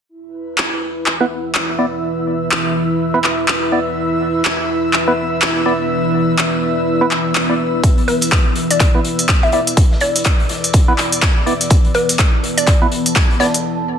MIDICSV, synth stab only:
0, 0, Header, 1, 2, 480
1, 0, Start_track
1, 0, Tempo, 483871
1, 92, Time_signature, 4, 2, 24, 8
1, 13874, End_track
2, 0, Start_track
2, 0, Title_t, "Synth stab"
2, 0, Program_c, 0, 62
2, 1195, Note_on_c, 0, 59, 93
2, 1195, Note_on_c, 0, 64, 86
2, 1195, Note_on_c, 0, 71, 101
2, 1243, Note_off_c, 0, 59, 0
2, 1243, Note_off_c, 0, 64, 0
2, 1243, Note_off_c, 0, 71, 0
2, 1772, Note_on_c, 0, 59, 87
2, 1772, Note_on_c, 0, 64, 78
2, 1772, Note_on_c, 0, 74, 91
2, 1842, Note_off_c, 0, 59, 0
2, 1842, Note_off_c, 0, 74, 0
2, 1843, Note_off_c, 0, 64, 0
2, 3115, Note_on_c, 0, 59, 90
2, 3115, Note_on_c, 0, 64, 89
2, 3115, Note_on_c, 0, 71, 100
2, 3163, Note_off_c, 0, 59, 0
2, 3163, Note_off_c, 0, 64, 0
2, 3163, Note_off_c, 0, 71, 0
2, 3692, Note_on_c, 0, 59, 87
2, 3692, Note_on_c, 0, 74, 95
2, 3693, Note_on_c, 0, 64, 82
2, 3763, Note_off_c, 0, 59, 0
2, 3763, Note_off_c, 0, 64, 0
2, 3763, Note_off_c, 0, 74, 0
2, 5035, Note_on_c, 0, 59, 96
2, 5035, Note_on_c, 0, 64, 87
2, 5035, Note_on_c, 0, 71, 102
2, 5083, Note_off_c, 0, 59, 0
2, 5083, Note_off_c, 0, 64, 0
2, 5083, Note_off_c, 0, 71, 0
2, 5612, Note_on_c, 0, 59, 83
2, 5612, Note_on_c, 0, 64, 75
2, 5612, Note_on_c, 0, 74, 94
2, 5683, Note_off_c, 0, 59, 0
2, 5683, Note_off_c, 0, 64, 0
2, 5683, Note_off_c, 0, 74, 0
2, 6955, Note_on_c, 0, 59, 97
2, 6955, Note_on_c, 0, 64, 89
2, 6955, Note_on_c, 0, 71, 105
2, 7003, Note_off_c, 0, 59, 0
2, 7003, Note_off_c, 0, 64, 0
2, 7003, Note_off_c, 0, 71, 0
2, 7435, Note_on_c, 0, 59, 77
2, 7435, Note_on_c, 0, 64, 69
2, 7435, Note_on_c, 0, 74, 79
2, 7483, Note_off_c, 0, 59, 0
2, 7483, Note_off_c, 0, 64, 0
2, 7483, Note_off_c, 0, 74, 0
2, 8876, Note_on_c, 0, 59, 93
2, 8876, Note_on_c, 0, 64, 88
2, 8876, Note_on_c, 0, 71, 107
2, 8923, Note_off_c, 0, 59, 0
2, 8923, Note_off_c, 0, 64, 0
2, 8923, Note_off_c, 0, 71, 0
2, 9453, Note_on_c, 0, 59, 82
2, 9453, Note_on_c, 0, 64, 80
2, 9453, Note_on_c, 0, 74, 95
2, 9523, Note_off_c, 0, 59, 0
2, 9523, Note_off_c, 0, 64, 0
2, 9523, Note_off_c, 0, 74, 0
2, 10795, Note_on_c, 0, 59, 94
2, 10795, Note_on_c, 0, 64, 90
2, 10795, Note_on_c, 0, 71, 106
2, 10843, Note_off_c, 0, 59, 0
2, 10843, Note_off_c, 0, 64, 0
2, 10843, Note_off_c, 0, 71, 0
2, 11372, Note_on_c, 0, 59, 88
2, 11372, Note_on_c, 0, 64, 78
2, 11372, Note_on_c, 0, 74, 93
2, 11442, Note_off_c, 0, 74, 0
2, 11443, Note_off_c, 0, 59, 0
2, 11443, Note_off_c, 0, 64, 0
2, 12715, Note_on_c, 0, 59, 95
2, 12715, Note_on_c, 0, 64, 89
2, 12715, Note_on_c, 0, 71, 106
2, 12763, Note_off_c, 0, 59, 0
2, 12763, Note_off_c, 0, 64, 0
2, 12763, Note_off_c, 0, 71, 0
2, 13291, Note_on_c, 0, 59, 85
2, 13291, Note_on_c, 0, 64, 78
2, 13291, Note_on_c, 0, 74, 95
2, 13362, Note_off_c, 0, 59, 0
2, 13362, Note_off_c, 0, 64, 0
2, 13362, Note_off_c, 0, 74, 0
2, 13874, End_track
0, 0, End_of_file